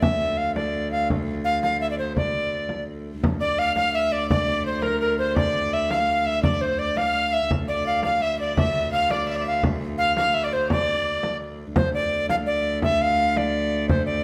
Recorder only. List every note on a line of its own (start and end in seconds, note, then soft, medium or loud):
0.01 0.39 E5 medium
0.37 0.54 F5 medium
0.55 0.89 D5 medium
0.92 1.08 F5 medium
1.44 1.61 F5 medium
1.63 1.80 F5 medium
1.81 1.89 E5 medium
1.91 1.98 D5 medium
1.99 2.15 C5 medium
2.17 2.84 D5 medium
3.41 3.60 D5 medium
3.59 3.75 F5 loud
3.76 3.93 F5 medium
3.94 4.14 E5 medium
4.12 4.29 D5 medium
4.30 4.63 D5 medium
4.66 4.84 C5 medium
4.82 5.00 A#4 medium
5.00 5.17 A#4 medium
5.19 5.35 C5 medium
5.37 5.75 D5 loud
5.73 5.93 E5 medium
5.91 6.28 F5 medium
6.26 6.42 E5 medium
6.43 6.63 D5 medium
6.61 6.80 C5 medium
6.79 6.99 D5 medium
6.97 7.35 F5 medium
7.34 7.51 E5 medium
7.68 7.85 D5 medium
7.87 8.03 F5 medium
8.04 8.23 F5 medium
8.22 8.39 E5 medium
8.40 8.56 D5 medium
8.57 8.90 E5 medium
8.92 9.12 F5 medium
9.11 9.46 D5 medium
9.47 9.63 F5 medium
9.98 10.15 F5 medium
10.16 10.36 F5 medium
10.34 10.46 E5 medium
10.44 10.55 D5 medium
10.53 10.70 C5 medium
10.72 11.37 D5 medium
11.76 11.92 C5 medium
11.94 12.27 D5 medium
12.30 12.36 F5 loud
12.46 12.79 D5 medium
12.83 13.03 E5 medium
13.01 13.39 F5 medium
13.37 13.89 D5 medium
13.89 14.05 C5 medium
14.06 14.24 D5 medium